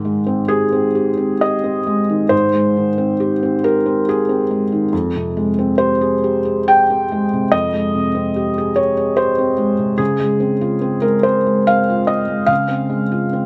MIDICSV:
0, 0, Header, 1, 2, 480
1, 0, Start_track
1, 0, Key_signature, -4, "major"
1, 0, Tempo, 898204
1, 1239, Time_signature, 3, 2, 24, 8
1, 1711, Tempo, 857143
1, 3151, Tempo, 900901
1, 3631, Tempo, 846262
1, 4591, Tempo, 818554
1, 6031, Tempo, 835655
1, 7544, End_track
2, 0, Start_track
2, 0, Title_t, "Felt piano"
2, 0, Program_c, 0, 0
2, 0, Control_c, 0, 64, 127
2, 0, Note_on_c, 0, 44, 58
2, 0, Note_on_c, 0, 51, 48
2, 26, Note_on_c, 0, 56, 46
2, 100, Note_off_c, 0, 51, 0
2, 141, Note_on_c, 0, 60, 52
2, 217, Note_off_c, 0, 56, 0
2, 258, Note_on_c, 0, 68, 83
2, 265, Note_on_c, 0, 67, 49
2, 335, Note_off_c, 0, 60, 0
2, 387, Note_on_c, 0, 60, 49
2, 461, Note_off_c, 0, 67, 0
2, 508, Note_on_c, 0, 67, 49
2, 588, Note_off_c, 0, 60, 0
2, 628, Note_on_c, 0, 60, 44
2, 710, Note_off_c, 0, 67, 0
2, 755, Note_on_c, 0, 75, 88
2, 756, Note_off_c, 0, 68, 0
2, 759, Note_on_c, 0, 67, 50
2, 828, Note_off_c, 0, 60, 0
2, 875, Note_on_c, 0, 60, 49
2, 952, Note_off_c, 0, 67, 0
2, 998, Note_on_c, 0, 56, 48
2, 1068, Note_off_c, 0, 60, 0
2, 1119, Note_on_c, 0, 51, 46
2, 1190, Note_off_c, 0, 56, 0
2, 1218, Note_off_c, 0, 44, 0
2, 1225, Note_on_c, 0, 72, 88
2, 1228, Note_on_c, 0, 44, 55
2, 1236, Note_off_c, 0, 75, 0
2, 1247, Control_c, 0, 64, 0
2, 1310, Note_off_c, 0, 51, 0
2, 1336, Control_c, 0, 64, 127
2, 1355, Note_on_c, 0, 56, 46
2, 1480, Note_on_c, 0, 51, 45
2, 1546, Note_off_c, 0, 56, 0
2, 1592, Note_on_c, 0, 60, 47
2, 1666, Note_off_c, 0, 51, 0
2, 1711, Note_on_c, 0, 67, 49
2, 1783, Note_off_c, 0, 60, 0
2, 1837, Note_on_c, 0, 60, 45
2, 1906, Note_off_c, 0, 67, 0
2, 1948, Note_off_c, 0, 72, 0
2, 1957, Note_on_c, 0, 70, 82
2, 1960, Note_on_c, 0, 67, 47
2, 2030, Note_off_c, 0, 60, 0
2, 2079, Note_on_c, 0, 60, 48
2, 2152, Note_off_c, 0, 67, 0
2, 2199, Note_off_c, 0, 70, 0
2, 2206, Note_on_c, 0, 67, 47
2, 2208, Note_on_c, 0, 68, 74
2, 2272, Note_off_c, 0, 60, 0
2, 2321, Note_on_c, 0, 60, 46
2, 2394, Note_off_c, 0, 67, 0
2, 2443, Note_on_c, 0, 56, 47
2, 2509, Note_off_c, 0, 60, 0
2, 2562, Note_on_c, 0, 51, 43
2, 2628, Note_off_c, 0, 56, 0
2, 2645, Note_off_c, 0, 44, 0
2, 2676, Note_off_c, 0, 51, 0
2, 2676, Note_on_c, 0, 41, 63
2, 2678, Note_off_c, 0, 68, 0
2, 2683, Control_c, 0, 64, 0
2, 2766, Control_c, 0, 64, 127
2, 2809, Note_on_c, 0, 48, 45
2, 2924, Note_on_c, 0, 56, 46
2, 2991, Note_off_c, 0, 48, 0
2, 3046, Note_on_c, 0, 60, 49
2, 3109, Note_off_c, 0, 56, 0
2, 3154, Note_on_c, 0, 72, 86
2, 3158, Note_on_c, 0, 67, 49
2, 3229, Note_off_c, 0, 60, 0
2, 3278, Note_on_c, 0, 68, 49
2, 3344, Note_off_c, 0, 67, 0
2, 3399, Note_on_c, 0, 67, 45
2, 3468, Note_off_c, 0, 68, 0
2, 3513, Note_on_c, 0, 68, 45
2, 3588, Note_off_c, 0, 67, 0
2, 3632, Note_off_c, 0, 72, 0
2, 3634, Note_on_c, 0, 79, 89
2, 3637, Note_on_c, 0, 67, 50
2, 3706, Note_off_c, 0, 68, 0
2, 3758, Note_on_c, 0, 60, 47
2, 3831, Note_off_c, 0, 67, 0
2, 3883, Note_on_c, 0, 56, 52
2, 3948, Note_off_c, 0, 60, 0
2, 4005, Note_on_c, 0, 48, 45
2, 4069, Note_off_c, 0, 56, 0
2, 4092, Note_off_c, 0, 41, 0
2, 4108, Note_on_c, 0, 75, 98
2, 4111, Note_on_c, 0, 41, 57
2, 4114, Note_off_c, 0, 79, 0
2, 4121, Control_c, 0, 64, 0
2, 4190, Note_off_c, 0, 48, 0
2, 4217, Control_c, 0, 64, 127
2, 4231, Note_on_c, 0, 56, 43
2, 4354, Note_on_c, 0, 48, 45
2, 4424, Note_off_c, 0, 56, 0
2, 4467, Note_on_c, 0, 60, 45
2, 4544, Note_off_c, 0, 48, 0
2, 4589, Note_on_c, 0, 67, 50
2, 4661, Note_off_c, 0, 60, 0
2, 4716, Note_on_c, 0, 68, 51
2, 4785, Note_off_c, 0, 67, 0
2, 4820, Note_on_c, 0, 73, 75
2, 4827, Note_on_c, 0, 67, 47
2, 4832, Note_off_c, 0, 75, 0
2, 4908, Note_off_c, 0, 68, 0
2, 4947, Note_on_c, 0, 68, 49
2, 5024, Note_off_c, 0, 67, 0
2, 5060, Note_on_c, 0, 72, 84
2, 5066, Note_on_c, 0, 67, 47
2, 5069, Note_off_c, 0, 73, 0
2, 5144, Note_off_c, 0, 68, 0
2, 5187, Note_on_c, 0, 60, 52
2, 5262, Note_off_c, 0, 67, 0
2, 5303, Note_on_c, 0, 56, 49
2, 5381, Note_off_c, 0, 60, 0
2, 5425, Note_on_c, 0, 48, 45
2, 5497, Note_off_c, 0, 56, 0
2, 5525, Note_off_c, 0, 41, 0
2, 5535, Note_on_c, 0, 68, 78
2, 5542, Note_off_c, 0, 72, 0
2, 5542, Note_on_c, 0, 49, 62
2, 5546, Note_off_c, 0, 48, 0
2, 5558, Control_c, 0, 64, 0
2, 5635, Control_c, 0, 64, 127
2, 5664, Note_on_c, 0, 56, 46
2, 5784, Note_on_c, 0, 60, 46
2, 5858, Note_off_c, 0, 56, 0
2, 5908, Note_on_c, 0, 65, 48
2, 5980, Note_off_c, 0, 60, 0
2, 6026, Note_on_c, 0, 60, 52
2, 6104, Note_off_c, 0, 65, 0
2, 6143, Note_on_c, 0, 70, 78
2, 6145, Note_off_c, 0, 68, 0
2, 6149, Note_on_c, 0, 56, 42
2, 6223, Note_off_c, 0, 60, 0
2, 6267, Note_on_c, 0, 72, 82
2, 6269, Note_off_c, 0, 70, 0
2, 6275, Note_on_c, 0, 60, 43
2, 6345, Note_off_c, 0, 56, 0
2, 6399, Note_on_c, 0, 56, 40
2, 6468, Note_off_c, 0, 60, 0
2, 6512, Note_off_c, 0, 72, 0
2, 6519, Note_on_c, 0, 77, 91
2, 6523, Note_on_c, 0, 60, 47
2, 6590, Note_off_c, 0, 56, 0
2, 6648, Note_on_c, 0, 65, 49
2, 6711, Note_off_c, 0, 60, 0
2, 6749, Note_on_c, 0, 75, 87
2, 6751, Note_on_c, 0, 60, 48
2, 6757, Note_off_c, 0, 77, 0
2, 6833, Note_off_c, 0, 65, 0
2, 6867, Note_on_c, 0, 56, 43
2, 6944, Note_off_c, 0, 60, 0
2, 6967, Note_off_c, 0, 49, 0
2, 6974, Note_on_c, 0, 77, 90
2, 6982, Note_on_c, 0, 49, 57
2, 6991, Note_off_c, 0, 75, 0
2, 7004, Control_c, 0, 64, 0
2, 7062, Note_off_c, 0, 56, 0
2, 7083, Control_c, 0, 64, 127
2, 7100, Note_on_c, 0, 60, 45
2, 7222, Note_on_c, 0, 56, 40
2, 7298, Note_off_c, 0, 60, 0
2, 7349, Note_on_c, 0, 65, 46
2, 7419, Note_off_c, 0, 56, 0
2, 7472, Note_on_c, 0, 60, 45
2, 7541, Note_off_c, 0, 65, 0
2, 7544, Note_off_c, 0, 49, 0
2, 7544, Note_off_c, 0, 60, 0
2, 7544, Note_off_c, 0, 77, 0
2, 7544, End_track
0, 0, End_of_file